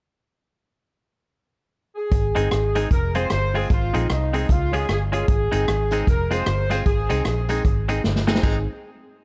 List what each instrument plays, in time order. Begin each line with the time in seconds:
1.96 horn section G#4
2.12 fingered electric bass G#1, kick, closed hi-hat
2.35 fingered electric bass G1, clean electric guitar G#3 C4 D#4 G#4, upright piano C4 D#4 G#4, closed hi-hat
2.51 fingered electric bass G#1, cross-stick, closed hi-hat
2.74 clean electric guitar G#3 C4 D#4 G#4, upright piano C4 D#4 G#4, closed hi-hat
2.91 fingered electric bass F1, horn section A#4, kick, closed hi-hat
3.14 clean electric guitar G#3 C4 F4 G#4, upright piano C4 F4 G#4, horn section C5, closed hi-hat
3.30 fingered electric bass G1, horn section C5, cross-stick, closed hi-hat
3.53 clean electric guitar G#3 C4 F4 G#4, upright piano C4 F4 G#4, horn section G#4, open hi-hat
3.70 fingered electric bass G#1, horn section F4, kick, closed hi-hat
3.93 fingered electric bass A#1, clean electric guitar G#3 C4 D#4 G#4, upright piano C4 D#4 G#4, closed hi-hat
4.10 fingered electric bass C2, horn section D#4, cross-stick, closed hi-hat
4.32 clean electric guitar G#3 C4 D#4 G#4, upright piano C4 D#4 G#4, horn section D#4, closed hi-hat
4.49 fingered electric bass C#2, upright piano F4 G#4, horn section F4, kick, closed hi-hat
4.71 clean electric guitar G#3 C#4 F4 G#4, upright piano C#4 F4 G#4, closed hi-hat
4.76 horn section G#4
4.89 fingered electric bass G1, horn section G#4, cross-stick, closed hi-hat
5.12 clean electric guitar G#3 C#4 F4 G#4, upright piano C#4 F4 G#4, horn section G#4, closed hi-hat
5.28 fingered electric bass G#1, kick, closed hi-hat
5.51 fingered electric bass G1, clean electric guitar G#3 C4 D#4 G#4, upright piano C4 D#4 G#4, closed hi-hat, tambourine
5.68 fingered electric bass G#1, cross-stick, closed hi-hat
5.90 clean electric guitar G#3 C4 D#4 G#4, upright piano C4 D#4 G#4, closed hi-hat, tambourine
6.07 fingered electric bass F1, horn section A#4, kick, closed hi-hat
6.30 clean electric guitar G#3 C4 F4 G#4, upright piano C4 F4 G#4, horn section C5, closed hi-hat, tambourine
6.46 fingered electric bass G1, cross-stick, closed hi-hat
6.70 clean electric guitar G#3 C4 F4 G#4, upright piano C4 F4 G#4, horn section C5, closed hi-hat, tambourine
6.86 fingered electric bass G#1, horn section G#4, kick, closed hi-hat
7.09 fingered electric bass C2, clean electric guitar G#3 C4 D#4 G#4, upright piano C4 D#4 G#4, closed hi-hat, tambourine
7.25 fingered electric bass A#1, horn section G#4, cross-stick, closed hi-hat
7.48 clean electric guitar G#3 C4 D#4 G#4, upright piano C4 D#4 G#4, closed hi-hat, tambourine
7.65 fingered electric bass G#1, upright piano D#4 G#4, kick, closed hi-hat
7.88 clean electric guitar G#3 C4 D#4 G#4, upright piano C4 D#4 G#4, closed hi-hat, tambourine
8.04 fingered electric bass G1, snare
8.16 snare
8.27 clean electric guitar G#3 C4 D#4 G#4, upright piano C4 D#4 G#4, snare, tambourine
8.35 snare
8.42 fingered electric bass G#1, clean electric guitar G#3 C4 D#4 G#4, upright piano C4 D#4 G#4, kick, crash, tambourine